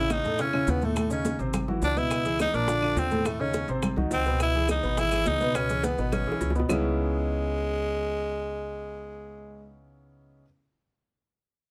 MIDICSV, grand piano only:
0, 0, Header, 1, 2, 480
1, 0, Start_track
1, 0, Key_signature, 4, "minor"
1, 0, Tempo, 286944
1, 1611, Time_signature, 4, 2, 24, 8
1, 19585, End_track
2, 0, Start_track
2, 0, Title_t, "Grand piano"
2, 0, Program_c, 0, 0
2, 0, Note_on_c, 0, 49, 73
2, 0, Note_on_c, 0, 61, 73
2, 0, Note_on_c, 0, 64, 67
2, 323, Note_off_c, 0, 49, 0
2, 325, Note_off_c, 0, 61, 0
2, 329, Note_off_c, 0, 64, 0
2, 411, Note_on_c, 0, 45, 82
2, 418, Note_on_c, 0, 57, 82
2, 423, Note_on_c, 0, 69, 82
2, 608, Note_off_c, 0, 45, 0
2, 613, Note_off_c, 0, 57, 0
2, 615, Note_off_c, 0, 69, 0
2, 654, Note_on_c, 0, 49, 68
2, 657, Note_on_c, 0, 61, 74
2, 671, Note_on_c, 0, 64, 72
2, 850, Note_off_c, 0, 49, 0
2, 852, Note_off_c, 0, 61, 0
2, 860, Note_off_c, 0, 64, 0
2, 894, Note_on_c, 0, 49, 79
2, 897, Note_on_c, 0, 61, 79
2, 898, Note_on_c, 0, 64, 76
2, 1286, Note_off_c, 0, 49, 0
2, 1288, Note_off_c, 0, 61, 0
2, 1289, Note_off_c, 0, 64, 0
2, 1381, Note_on_c, 0, 45, 81
2, 1387, Note_on_c, 0, 57, 83
2, 1389, Note_on_c, 0, 69, 82
2, 1573, Note_off_c, 0, 45, 0
2, 1577, Note_off_c, 0, 57, 0
2, 1578, Note_off_c, 0, 69, 0
2, 1601, Note_on_c, 0, 45, 78
2, 1605, Note_on_c, 0, 57, 78
2, 1610, Note_on_c, 0, 69, 78
2, 1802, Note_off_c, 0, 45, 0
2, 1804, Note_off_c, 0, 57, 0
2, 1807, Note_off_c, 0, 69, 0
2, 1835, Note_on_c, 0, 49, 73
2, 1847, Note_on_c, 0, 61, 75
2, 1848, Note_on_c, 0, 63, 68
2, 2235, Note_off_c, 0, 49, 0
2, 2241, Note_off_c, 0, 61, 0
2, 2243, Note_off_c, 0, 63, 0
2, 2327, Note_on_c, 0, 48, 80
2, 2340, Note_on_c, 0, 60, 82
2, 2343, Note_on_c, 0, 72, 78
2, 2721, Note_off_c, 0, 48, 0
2, 2729, Note_off_c, 0, 60, 0
2, 2731, Note_off_c, 0, 72, 0
2, 2809, Note_on_c, 0, 64, 74
2, 2810, Note_on_c, 0, 52, 76
2, 2819, Note_on_c, 0, 66, 80
2, 3203, Note_off_c, 0, 52, 0
2, 3203, Note_off_c, 0, 64, 0
2, 3208, Note_off_c, 0, 66, 0
2, 3283, Note_on_c, 0, 47, 75
2, 3289, Note_on_c, 0, 59, 80
2, 3297, Note_on_c, 0, 71, 78
2, 3678, Note_off_c, 0, 47, 0
2, 3682, Note_off_c, 0, 59, 0
2, 3687, Note_off_c, 0, 71, 0
2, 3763, Note_on_c, 0, 52, 72
2, 3765, Note_on_c, 0, 64, 73
2, 3770, Note_on_c, 0, 68, 72
2, 4159, Note_off_c, 0, 52, 0
2, 4159, Note_off_c, 0, 64, 0
2, 4163, Note_off_c, 0, 68, 0
2, 4229, Note_on_c, 0, 46, 76
2, 4231, Note_on_c, 0, 58, 81
2, 4242, Note_on_c, 0, 70, 78
2, 4433, Note_off_c, 0, 46, 0
2, 4435, Note_off_c, 0, 58, 0
2, 4441, Note_off_c, 0, 70, 0
2, 4468, Note_on_c, 0, 50, 65
2, 4474, Note_on_c, 0, 62, 67
2, 4482, Note_on_c, 0, 65, 70
2, 4672, Note_off_c, 0, 50, 0
2, 4676, Note_off_c, 0, 62, 0
2, 4681, Note_off_c, 0, 65, 0
2, 4719, Note_on_c, 0, 50, 70
2, 4722, Note_on_c, 0, 62, 78
2, 4727, Note_on_c, 0, 65, 70
2, 5116, Note_off_c, 0, 50, 0
2, 5118, Note_off_c, 0, 62, 0
2, 5120, Note_off_c, 0, 65, 0
2, 5198, Note_on_c, 0, 45, 82
2, 5201, Note_on_c, 0, 57, 77
2, 5211, Note_on_c, 0, 69, 82
2, 5398, Note_off_c, 0, 45, 0
2, 5400, Note_off_c, 0, 57, 0
2, 5406, Note_off_c, 0, 69, 0
2, 5450, Note_on_c, 0, 45, 83
2, 5450, Note_on_c, 0, 57, 85
2, 5463, Note_on_c, 0, 69, 83
2, 5645, Note_off_c, 0, 45, 0
2, 5646, Note_off_c, 0, 57, 0
2, 5653, Note_off_c, 0, 69, 0
2, 5683, Note_on_c, 0, 49, 69
2, 5692, Note_on_c, 0, 61, 68
2, 5694, Note_on_c, 0, 63, 73
2, 6077, Note_off_c, 0, 49, 0
2, 6083, Note_off_c, 0, 61, 0
2, 6084, Note_off_c, 0, 63, 0
2, 6166, Note_on_c, 0, 48, 83
2, 6167, Note_on_c, 0, 60, 80
2, 6168, Note_on_c, 0, 72, 85
2, 6560, Note_off_c, 0, 48, 0
2, 6560, Note_off_c, 0, 60, 0
2, 6560, Note_off_c, 0, 72, 0
2, 6641, Note_on_c, 0, 51, 79
2, 6642, Note_on_c, 0, 63, 77
2, 6651, Note_on_c, 0, 66, 71
2, 7036, Note_off_c, 0, 51, 0
2, 7037, Note_off_c, 0, 63, 0
2, 7042, Note_off_c, 0, 66, 0
2, 7125, Note_on_c, 0, 47, 79
2, 7133, Note_on_c, 0, 59, 84
2, 7138, Note_on_c, 0, 71, 79
2, 7519, Note_off_c, 0, 47, 0
2, 7523, Note_off_c, 0, 59, 0
2, 7526, Note_off_c, 0, 71, 0
2, 7612, Note_on_c, 0, 52, 67
2, 7617, Note_on_c, 0, 64, 72
2, 7623, Note_on_c, 0, 68, 73
2, 8003, Note_off_c, 0, 52, 0
2, 8006, Note_off_c, 0, 64, 0
2, 8009, Note_off_c, 0, 68, 0
2, 8075, Note_on_c, 0, 47, 79
2, 8083, Note_on_c, 0, 59, 84
2, 8088, Note_on_c, 0, 71, 85
2, 8276, Note_off_c, 0, 47, 0
2, 8281, Note_off_c, 0, 59, 0
2, 8284, Note_off_c, 0, 71, 0
2, 8326, Note_on_c, 0, 52, 70
2, 8334, Note_on_c, 0, 64, 67
2, 8341, Note_on_c, 0, 68, 72
2, 8522, Note_off_c, 0, 52, 0
2, 8527, Note_off_c, 0, 64, 0
2, 8531, Note_off_c, 0, 68, 0
2, 8563, Note_on_c, 0, 52, 78
2, 8564, Note_on_c, 0, 64, 76
2, 8570, Note_on_c, 0, 68, 76
2, 8958, Note_off_c, 0, 52, 0
2, 8958, Note_off_c, 0, 64, 0
2, 8962, Note_off_c, 0, 68, 0
2, 9039, Note_on_c, 0, 47, 82
2, 9045, Note_on_c, 0, 59, 83
2, 9052, Note_on_c, 0, 71, 78
2, 9238, Note_off_c, 0, 47, 0
2, 9242, Note_off_c, 0, 59, 0
2, 9246, Note_off_c, 0, 71, 0
2, 9282, Note_on_c, 0, 47, 77
2, 9290, Note_on_c, 0, 59, 75
2, 9298, Note_on_c, 0, 71, 77
2, 9480, Note_off_c, 0, 47, 0
2, 9485, Note_off_c, 0, 59, 0
2, 9489, Note_off_c, 0, 71, 0
2, 9531, Note_on_c, 0, 52, 72
2, 9537, Note_on_c, 0, 64, 68
2, 9537, Note_on_c, 0, 68, 72
2, 9922, Note_off_c, 0, 52, 0
2, 9926, Note_off_c, 0, 64, 0
2, 9926, Note_off_c, 0, 68, 0
2, 10015, Note_on_c, 0, 47, 84
2, 10017, Note_on_c, 0, 59, 85
2, 10023, Note_on_c, 0, 71, 80
2, 10404, Note_off_c, 0, 47, 0
2, 10405, Note_off_c, 0, 59, 0
2, 10409, Note_off_c, 0, 71, 0
2, 10489, Note_on_c, 0, 52, 75
2, 10491, Note_on_c, 0, 64, 77
2, 10493, Note_on_c, 0, 68, 79
2, 10881, Note_off_c, 0, 52, 0
2, 10882, Note_off_c, 0, 64, 0
2, 10884, Note_off_c, 0, 68, 0
2, 10953, Note_on_c, 0, 47, 85
2, 10964, Note_on_c, 0, 59, 78
2, 10969, Note_on_c, 0, 71, 80
2, 11155, Note_off_c, 0, 47, 0
2, 11161, Note_off_c, 0, 59, 0
2, 11164, Note_off_c, 0, 71, 0
2, 11192, Note_on_c, 0, 49, 89
2, 11195, Note_on_c, 0, 56, 86
2, 11201, Note_on_c, 0, 59, 84
2, 11205, Note_on_c, 0, 61, 80
2, 11205, Note_on_c, 0, 63, 83
2, 11211, Note_on_c, 0, 64, 104
2, 17435, Note_off_c, 0, 49, 0
2, 17437, Note_off_c, 0, 56, 0
2, 17444, Note_off_c, 0, 59, 0
2, 17448, Note_off_c, 0, 61, 0
2, 17448, Note_off_c, 0, 63, 0
2, 17454, Note_off_c, 0, 64, 0
2, 19585, End_track
0, 0, End_of_file